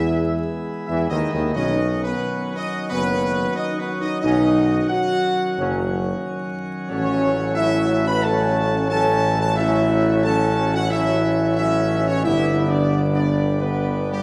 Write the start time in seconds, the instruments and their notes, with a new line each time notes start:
Already playing: tuba E2, trombone section E3, pipe organ E3 G#3 B3 E4, french horn section E4, trumpet section E5
0.86 tuba E2, trombone section E3, french horn section E4, trumpet section E5
1.10 tuba D#2, trombone section D#3, french horn section D#4, trumpet section D#5
1.31 tuba D#2, trombone section D#3, french horn section D#4, trumpet section D#5
1.54 tuba B1, pipe organ D#3 F#3 C#4 F#4, trombone section F#3 C#4, french horn section D#4, trumpet section D#5
2.04 french horn section B3, trumpet section B4
2.56 french horn section D#4, trumpet section D#5
2.90 tuba F#1, trombone section F#3 C#4, french horn section B3, trumpet section B4
3.56 french horn section D#4, trumpet section D#5
3.79 french horn section B3, trumpet section B4
4.02 french horn section D#4, trumpet section D#5
4.21 tuba B1, trombone section F#3 C#4, french horn section D#4, trumpet section D#5
4.88 french horn section F#4, trumpet section F#5
5.57 tuba F#1, trombone section F#3 C#4
6.90 tuba A1, pipe organ E3 A3 C#4 F#4, trombone section F#3 C#4, french horn section C#4, trumpet section C#5
7.55 trombone section F#3 C#4, french horn section E4, trumpet section E5
8.08 french horn section B4, trumpet section B5
8.23 trombone section F#3 C#4, french horn section A4, trumpet section A5
8.90 trombone section F#3 C#4, french horn section A4, trumpet section A5
9.40 french horn section A4, trumpet section A5
9.55 trombone section F#3 C#4, french horn section E4, trumpet section E5
10.23 trombone section F#3 C#4, french horn section A4, trumpet section A5
10.75 french horn section F#4, trumpet section F#5
10.90 trombone section F#3 C#4, french horn section E4, trumpet section E5
11.57 trombone section F#3 C#4, french horn section E4, trumpet section E5
11.92 trombone section D#4
12.08 french horn section C#4, trumpet section C#5
12.24 tuba G1, pipe organ D3 G3 B3 D4, trombone section D3 B3, french horn section E4, trumpet section E5
12.69 french horn section D4, trumpet section D5
13.14 french horn section D4, trumpet section D5
13.60 trombone section D3 B3, french horn section B3, trumpet section B4
14.11 french horn section G3, trumpet section G4